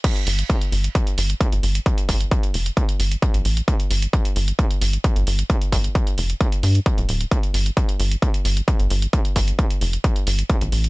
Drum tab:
CC |x---------------|----------------|----------------|----------------|
HH |xxoxxxoxxxoxxxox|xxoxxxoxxxoxxxox|xxoxxxoxxxoxxxox|xxoxxxoxxxoxxxox|
BD |o---o---o---o---|o-o-o---o---o---|o---o---o---o---|o-o-o---o---o---|

CC |----------------|----------------|
HH |xxoxxxoxxxoxxxox|xxoxxxoxxxoxxxox|
BD |o---o---o---o---|o-o-o---o---o---|